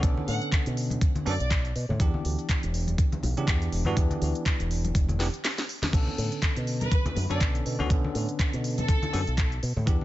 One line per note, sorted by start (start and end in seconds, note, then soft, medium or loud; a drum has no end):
0.02 0.14 B1 loud
0.02 1.24 D3 medium
0.02 1.24 B3 medium
0.02 1.24 C#4 medium
0.02 1.25 A4 medium
0.02 kick loud
0.02 closed hi-hat medium
0.17 low conga medium
0.28 0.38 A2 loud
0.28 0.41 F#5 medium
0.28 open hi-hat loud
0.42 closed hi-hat soft
0.52 kick medium
0.52 clap loud
0.52 closed hi-hat medium
0.66 0.98 B2 medium
0.66 closed hi-hat medium
0.77 open hi-hat loud
0.90 closed hi-hat medium
0.90 high conga medium
1.01 kick loud
1.01 closed hi-hat medium
1.15 muted fingered electric bass stroke soft
1.15 closed hi-hat soft
1.15 low conga medium
1.25 1.37 F#2 medium
1.25 1.33 D3 medium
1.25 1.33 B3 medium
1.25 1.33 C#4 medium
1.25 1.34 A4 loud
1.25 1.35 D5 medium
1.25 open hi-hat loud
1.40 1.71 B1 medium
1.40 1.47 D5 medium
1.40 closed hi-hat soft
1.51 kick loud
1.51 clap loud
1.51 closed hi-hat medium
1.65 closed hi-hat soft
1.76 1.86 B2 medium
1.76 open hi-hat loud
1.89 1.97 A2 loud
1.89 low conga medium
1.99 2.10 E2 loud
1.99 3.33 E3 medium
1.99 3.33 B3 medium
1.99 3.34 D4 medium
1.99 3.34 G4 medium
1.99 kick loud
1.99 closed hi-hat medium
2.14 low conga medium
2.25 2.35 D2 loud
2.25 open hi-hat loud
2.39 closed hi-hat soft
2.49 kick medium
2.49 clap loud
2.49 closed hi-hat medium
2.63 2.94 E1 medium
2.63 closed hi-hat medium
2.74 open hi-hat loud
2.87 closed hi-hat medium
2.87 high conga medium
2.98 kick loud
2.98 closed hi-hat medium
3.12 closed hi-hat soft
3.12 high conga medium
3.12 low conga medium
3.23 3.33 B1 loud
3.23 open hi-hat loud
3.23 high conga medium
3.37 3.45 C#3 medium
3.37 3.83 E3 medium
3.37 3.83 B3 medium
3.37 3.83 D4 medium
3.37 3.83 G4 medium
3.37 closed hi-hat soft
3.48 3.67 E2 loud
3.48 kick loud
3.48 clap loud
3.48 closed hi-hat medium
3.62 closed hi-hat soft
3.72 3.83 E1 loud
3.72 open hi-hat loud
3.85 3.94 G2 medium
3.85 3.95 E3 medium
3.85 3.95 B3 medium
3.85 3.95 D4 medium
3.85 3.95 F#4 loud
3.85 low conga medium
3.96 4.07 E2 loud
3.96 5.17 B3 medium
3.96 5.18 D4 medium
3.96 kick loud
3.96 closed hi-hat medium
4.10 closed hi-hat soft
4.10 low conga medium
4.22 4.32 D2 loud
4.22 open hi-hat loud
4.35 closed hi-hat soft
4.46 kick loud
4.46 clap loud
4.46 closed hi-hat medium
4.60 4.91 E1 medium
4.60 closed hi-hat medium
4.71 open hi-hat loud
4.84 closed hi-hat medium
4.84 high conga medium
4.95 5.28 E1 medium
4.95 kick loud
4.95 closed hi-hat medium
5.08 closed hi-hat soft
5.08 low conga medium
5.19 5.27 E3 medium
5.19 5.27 B3 medium
5.19 5.27 D4 medium
5.19 5.27 G4 loud
5.19 snare medium
5.19 open hi-hat loud
5.34 closed hi-hat soft
5.45 snare medium
5.45 clap loud
5.45 closed hi-hat medium
5.58 snare medium
5.58 closed hi-hat soft
5.69 open hi-hat loud
5.82 snare medium
5.82 closed hi-hat soft
5.82 high conga medium
5.82 low conga medium
5.92 6.04 B1 loud
5.92 7.26 D3 medium
5.92 7.27 B3 medium
5.92 7.27 C#4 medium
5.92 7.27 A4 medium
5.92 kick loud
5.92 closed hi-hat medium
5.92 crash medium
6.07 low conga medium
6.18 6.28 A2 loud
6.18 open hi-hat loud
6.32 closed hi-hat soft
6.42 kick loud
6.42 clap loud
6.42 closed hi-hat medium
6.56 6.88 B2 medium
6.56 closed hi-hat medium
6.67 open hi-hat loud
6.81 7.16 B4 medium
6.81 closed hi-hat medium
6.81 high conga medium
6.92 kick loud
6.92 closed hi-hat medium
7.06 closed hi-hat soft
7.06 high conga medium
7.06 low conga loud
7.16 7.27 F#2 loud
7.16 open hi-hat loud
7.16 high conga medium
7.30 7.38 F#2 medium
7.30 7.76 D3 medium
7.30 7.76 B3 medium
7.30 7.76 C#4 medium
7.30 7.76 A4 medium
7.30 7.40 D5 medium
7.30 closed hi-hat soft
7.41 7.60 B1 loud
7.41 kick loud
7.41 clap loud
7.41 closed hi-hat medium
7.55 closed hi-hat soft
7.66 7.76 B2 loud
7.66 open hi-hat loud
7.79 7.88 D2 medium
7.79 7.88 D3 medium
7.79 7.88 B3 medium
7.79 7.89 C#4 medium
7.79 7.89 F#4 loud
7.79 low conga medium
7.89 8.00 B1 loud
7.89 9.10 D3 medium
7.89 9.11 B3 medium
7.89 9.11 C#4 medium
7.89 kick loud
7.89 closed hi-hat medium
8.04 low conga medium
8.15 8.25 A2 loud
8.15 open hi-hat loud
8.29 closed hi-hat soft
8.39 kick loud
8.39 clap loud
8.39 closed hi-hat medium
8.53 8.84 B2 medium
8.53 closed hi-hat medium
8.64 open hi-hat loud
8.78 9.46 A4 loud
8.78 closed hi-hat medium
8.78 high conga medium
8.88 kick loud
8.88 closed hi-hat medium
9.02 muted fingered electric bass stroke soft
9.02 closed hi-hat soft
9.02 low conga medium
9.13 9.24 F#2 medium
9.13 9.20 D3 medium
9.13 9.20 B3 medium
9.13 9.20 C#4 medium
9.13 9.21 A4 loud
9.13 open hi-hat loud
9.27 9.58 B1 medium
9.27 closed hi-hat soft
9.38 kick loud
9.38 clap loud
9.38 closed hi-hat medium
9.52 closed hi-hat soft
9.63 9.73 B2 loud
9.63 open hi-hat loud
9.76 9.84 A2 loud
9.76 low conga medium
9.86 9.97 E2 loud
9.86 10.04 E3 medium
9.86 10.04 B3 medium
9.86 10.04 D4 medium
9.86 10.04 G4 medium
9.86 kick loud
9.86 closed hi-hat medium
10.01 low conga medium